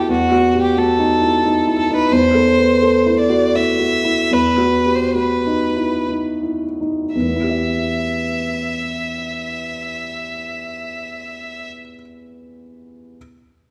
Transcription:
Already playing: grand piano E4 F#4 G4 A4, violin G4
0.09 grand piano E2, violin F#4
0.32 grand piano F#4
0.54 grand piano G4
0.61 violin G4
0.77 grand piano F#4, violin A4
0.99 grand piano D#4
1.22 grand piano E4
1.44 grand piano D#4
1.67 grand piano E4
1.78 violin A4
1.91 grand piano D#4
1.95 violin B4
2.12 grand piano E2, violin C5
2.35 grand piano A4
2.59 grand piano B4
2.82 grand piano A4
3.06 grand piano E4
3.19 violin D5
3.29 grand piano F#4
3.55 grand piano E4, violin E5
3.79 grand piano F#4
4.05 grand piano E4
4.31 grand piano E2, violin B4
4.58 grand piano F#4
4.86 grand piano G4
4.95 violin C5
5.15 grand piano F#4, violin B4
5.46 grand piano D#4
5.77 grand piano E4
6.09 grand piano D#4
6.43 grand piano E4
6.81 grand piano D#4
7.15 grand piano E2, violin E5
7.22 grand piano E3
7.29 grand piano B3
7.36 grand piano E4
7.43 grand piano G4
7.50 grand piano E5

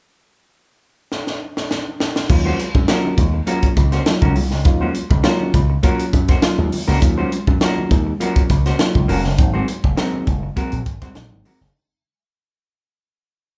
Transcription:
1.12 snare
1.27 snare
1.57 snare
1.71 snare
2.00 snare
2.16 snare
2.29 slap bass D#2, reed electric piano F#3 A#3 C#4 F4, muted hollow-body jazz guitar stroke, kick, crash, muted conga
2.45 hollow-body jazz guitar A#3 C#4 F#4 C5, high conga
2.59 muted hollow-body jazz guitar stroke, closed hi-hat, muted conga
2.75 slap bass F#2, muted hollow-body jazz guitar stroke, kick, high conga
2.88 reed electric piano F#3 A#3 C#4 F4, hollow-body jazz guitar A#3 C#4 F#4 A#4, snare, closed hi-hat
3.04 low conga
3.18 slap bass D#2, muted hollow-body jazz guitar stroke, kick, closed hi-hat, high conga
3.34 muted hollow-body jazz guitar stroke
3.47 reed electric piano F#3 A#3 C#4 F4, hollow-body jazz guitar A#3 C#4 F#4 A#4, closed hi-hat, muted conga
3.63 kick, closed hi-hat
3.77 slap bass C#2, muted hollow-body jazz guitar stroke, kick, closed hi-hat
3.92 hollow-body jazz guitar A#3 C#4 F#4 C5, snare, closed hi-hat
4.06 reed electric piano F#3 A#3 C#4 F4, muted hollow-body jazz guitar stroke, snare, closed hi-hat, muted conga
4.22 slap bass C#2, hollow-body jazz guitar A#3 C#4 F#4 A#4, kick, high conga
4.36 slap bass C2, muted hollow-body jazz guitar stroke, open hi-hat, muted conga, low conga
4.51 slap bass C#2, muted hollow-body jazz guitar stroke, snare
4.65 slap bass D#2, reed electric piano F#3 A#3 C#4 F4, muted hollow-body jazz guitar stroke, kick, closed hi-hat
4.81 hollow-body jazz guitar A#3 C#4 F#4 C5, high conga
4.94 muted hollow-body jazz guitar stroke, closed hi-hat
5.10 slap bass C#2, muted hollow-body jazz guitar stroke, kick, high conga
5.23 reed electric piano F#3 A#3 C#4 F4, hollow-body jazz guitar A#3 C#4 F#4 A#4, snare, closed hi-hat, muted conga
5.40 low conga
5.54 slap bass C#2, muted hollow-body jazz guitar stroke, kick, closed hi-hat, high conga
5.70 muted hollow-body jazz guitar stroke
5.83 reed electric piano F#3 A#3 C#4 F4, hollow-body jazz guitar A#3 C#4 F#4 A#4, kick, closed hi-hat
5.99 closed hi-hat
6.13 slap bass F#2, muted hollow-body jazz guitar stroke, kick, closed hi-hat, muted conga
6.28 hollow-body jazz guitar A#3 C#4 F#4 C5, kick, snare, closed hi-hat
6.42 reed electric piano F#3 A#3 C#4 F4, muted hollow-body jazz guitar stroke, muted slap bass stroke, snare, closed hi-hat, muted conga
6.58 slap bass D#2, muted hollow-body jazz guitar stroke, high conga
6.72 open hi-hat, muted conga, low conga
6.88 slap bass C#2, hollow-body jazz guitar A#3 C#4 F#4 A#4, snare
7.01 slap bass D#2, reed electric piano F#3 A#3 C#4 F4, muted hollow-body jazz guitar stroke, kick, closed hi-hat
7.18 hollow-body jazz guitar A#3 C#4 F#4 C5, high conga
7.32 muted hollow-body jazz guitar stroke, closed hi-hat
7.47 slap bass F#2, muted hollow-body jazz guitar stroke, kick, high conga
7.61 reed electric piano F#3 A#3 C#4 F4, hollow-body jazz guitar A#3 C#4 F#4 A#4, snare, closed hi-hat
7.78 low conga
7.91 slap bass D#2, muted hollow-body jazz guitar stroke, kick, closed hi-hat, muted conga, high conga
8.07 muted hollow-body jazz guitar stroke
8.20 reed electric piano F#3 A#3 C#4 F4, hollow-body jazz guitar A#3 C#4 F#4 A#4, closed hi-hat
8.36 kick, closed hi-hat
8.50 slap bass C#2, muted hollow-body jazz guitar stroke, kick, closed hi-hat, muted conga
8.66 hollow-body jazz guitar A#3 C#4 F#4 C5, snare, closed hi-hat
8.79 reed electric piano F#3 A#3 C#4 F4, muted hollow-body jazz guitar stroke, snare, closed hi-hat
8.95 slap bass C#2, muted hollow-body jazz guitar stroke, kick, high conga
9.08 slap bass F1, hollow-body jazz guitar A#3 C#4 F#4 A#4, open hi-hat, low conga
9.24 slap bass F#1, muted hollow-body jazz guitar stroke, snare
9.37 slap bass G#1, reed electric piano F#3 A#3 C4 D#4, muted hollow-body jazz guitar stroke, kick, closed hi-hat
9.41 muted conga
9.54 hollow-body jazz guitar G#3 C4 F#4 C5, high conga
9.68 muted hollow-body jazz guitar stroke, closed hi-hat
9.84 slap bass F#1, muted hollow-body jazz guitar stroke, kick, high conga
9.97 reed electric piano F#3 A#3 C4 D#4, hollow-body jazz guitar G#3 C4 F#4 A#4, snare, closed hi-hat
10.14 low conga
10.27 slap bass F#1, muted hollow-body jazz guitar stroke, kick, closed hi-hat, muted conga, high conga
10.43 muted hollow-body jazz guitar stroke
10.56 reed electric piano F#3 A#3 C4 F#4, hollow-body jazz guitar G#3 C4 F#4 A#4, kick, closed hi-hat, muted conga
10.72 slap bass A#1, closed hi-hat
10.86 slap bass G#1, muted hollow-body jazz guitar stroke, kick, closed hi-hat
11.02 slap bass C2, hollow-body jazz guitar G#3 C4 F#4 C5, kick, snare, closed hi-hat
11.15 slap bass A#1, reed electric piano F#3 A#3 C4 D#4, muted hollow-body jazz guitar stroke, snare, closed hi-hat, high conga
11.31 slap bass G#1, muted hollow-body jazz guitar stroke, high conga
11.45 hollow-body jazz guitar G#3 C4 F#4 A#4, open hi-hat, low conga
11.60 slap bass F#1, muted hollow-body jazz guitar stroke, snare

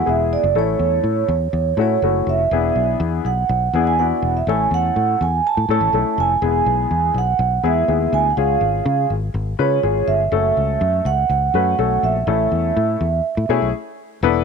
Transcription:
0.06 fingered electric bass E1, upright piano G#3 B3 E4 G#4, vibraphone E5
0.33 vibraphone D5
0.43 fingered electric bass F#1
0.55 fingered electric bass A1, upright piano A3 C#4 E4 A4, vibraphone C#5
0.79 fingered electric bass E2
1.04 fingered electric bass A2
1.28 fingered electric bass E2
1.53 fingered electric bass E2
1.77 fingered electric bass A2, upright piano A3 C#4 E4 F#4
1.81 vibraphone C#5
2.02 fingered electric bass F#1, upright piano A3 C#4 E4 F#4
2.27 fingered electric bass F1, vibraphone E5
2.51 fingered electric bass E1, upright piano B3 D4 E4 G#4
2.76 fingered electric bass B1
3.00 fingered electric bass E2
3.25 fingered electric bass B1, vibraphone F#5
3.49 fingered electric bass B1
3.73 fingered electric bass E2, upright piano B3 D4 E4 G#4
3.87 vibraphone G#5
3.99 upright piano B3 D4 E4 F#4, vibraphone F#5
4.22 fingered electric bass E1
4.37 vibraphone E5
4.47 fingered electric bass A1, upright piano A3 C#4 E4 A4, vibraphone G#5
4.71 fingered electric bass E2, vibraphone F#5
4.96 fingered electric bass A2
5.21 fingered electric bass E2, vibraphone G#5
5.47 vibraphone A5
5.57 fingered electric bass A2
5.69 fingered electric bass A2, upright piano A3 C#4 E4 A4, vibraphone A5
5.81 fingered electric bass A1
5.93 fingered electric bass B1, upright piano A3 C#4 E4 A4
6.18 fingered electric bass F1, vibraphone G#5
6.42 fingered electric bass E1, upright piano G#3 B3 E4 G#4
6.66 fingered electric bass B1
6.91 fingered electric bass E2
7.14 fingered electric bass B1, vibraphone F#5
7.39 fingered electric bass B1
7.63 fingered electric bass E2, upright piano G#3 B3 E4 G#4, vibraphone E5
7.88 fingered electric bass D#2, upright piano G#3 B3 E4 G#4
8.13 fingered electric bass D2, vibraphone G#5
8.30 vibraphone F#5
8.37 fingered electric bass C#2, upright piano G#3 C#4 F4 G#4, vibraphone F5
8.61 fingered electric bass G#1
8.86 fingered electric bass C#3
9.10 fingered electric bass G#1
9.34 fingered electric bass G#1
9.59 fingered electric bass C#3, upright piano G#3 C#4 F4 B4, vibraphone C#5
9.83 fingered electric bass G#1, upright piano G#3 C#4 F4 G#4
10.08 fingered electric bass G1, vibraphone E5
10.32 fingered electric bass F#1, upright piano A3 C#4 F#4 A4
10.57 fingered electric bass C#2
10.81 fingered electric bass F#2
11.05 fingered electric bass C#2, vibraphone F#5
11.29 fingered electric bass C#2, vibraphone F#5
11.54 fingered electric bass F#2, upright piano A3 C#4 F#4 B4
11.79 fingered electric bass B1, upright piano A3 C#4 F#4 A4
12.03 fingered electric bass A#1, vibraphone E5
12.27 fingered electric bass A1, upright piano A3 C#4 E4 A4
12.52 fingered electric bass E2
12.77 fingered electric bass A2
13.01 fingered electric bass E2
13.37 fingered electric bass A2
13.49 fingered electric bass B2, upright piano A3 C#4 E4 G#4
13.62 fingered electric bass B1
14.23 fingered electric bass E1, upright piano B3 D4 E4 A4 B4

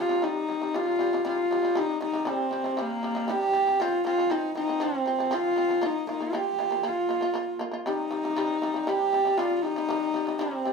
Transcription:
Already playing: horsehead fiddle F4
0.09 shamisen C3 G3
0.22 shamisen C3 G3, horsehead fiddle D#4
0.49 shamisen C3 G3
0.62 shamisen C3 G3
0.74 shamisen C3 G3, horsehead fiddle F4
0.99 shamisen C3 G3
1.13 shamisen C3 G3
1.25 shamisen C3 G3, horsehead fiddle F4
1.51 shamisen C3 G3
1.63 shamisen C3 G3
1.75 shamisen C3 G3, horsehead fiddle D#4
2.01 shamisen C3 G3, horsehead fiddle D#4
2.13 shamisen C3 G3
2.25 shamisen C3 G3, horsehead fiddle C4
2.51 shamisen C3 G3
2.64 shamisen C3 G3
2.77 shamisen C3 G3, horsehead fiddle A#3
3.03 shamisen C3 G3
3.15 shamisen C3 G3
3.28 shamisen C3 G3, horsehead fiddle G4
3.53 shamisen C3 G3
3.67 shamisen C3 G3
3.80 shamisen F3 C4, horsehead fiddle F4
4.05 shamisen F3 C4, horsehead fiddle F4
4.18 shamisen F3 C4
4.30 shamisen F3 C4, horsehead fiddle D#4
4.55 shamisen F3 C4, horsehead fiddle D#4
4.68 shamisen F3 C4
4.80 shamisen F3 C4, horsehead fiddle C4
5.06 shamisen F3 C4
5.19 shamisen F3 C4
5.31 shamisen F3 C4, horsehead fiddle F4
5.56 shamisen F3 C4
5.69 shamisen F3 C4
5.81 shamisen A#3 F4, horsehead fiddle D#4
6.07 shamisen A#3 F4, horsehead fiddle D#4
6.20 shamisen A#3 F4
6.33 shamisen A#3 F4, horsehead fiddle G4
6.59 shamisen A#3 F4
6.71 shamisen A#3 F4
6.83 shamisen A#3 F4, horsehead fiddle F4
7.09 shamisen A#3 F4
7.21 shamisen A#3 F4
7.34 shamisen A#3 F4
7.59 shamisen A#3 F4
7.71 shamisen A#3 F4
7.86 shamisen C3 G3, horsehead fiddle D#4
8.11 shamisen C3 G3
8.24 shamisen C3 G3
8.37 shamisen C3 G3
8.62 shamisen C3 G3
8.74 shamisen C3 G3
8.87 shamisen C3 G3, horsehead fiddle G4
9.13 shamisen C3 G3
9.25 shamisen C3 G3
9.37 shamisen C3 G3, horsehead fiddle F4
9.56 horsehead fiddle F4
9.62 shamisen C3 G3, horsehead fiddle D#4
9.76 shamisen C3 G3
9.89 shamisen C3 G3
10.14 shamisen C3 G3
10.27 shamisen C3 G3
10.39 shamisen C3 G3, horsehead fiddle C4
10.65 shamisen C3 G3

